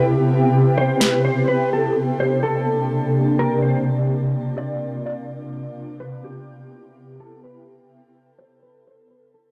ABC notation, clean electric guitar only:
X:1
M:4/4
L:1/8
Q:1/4=126
K:C
V:1 name="Clean electric guitar"
z3 c B c B A | z c A4 _B c | z3 d2 d z2 | z B G4 A B |
z3 c B c B A |]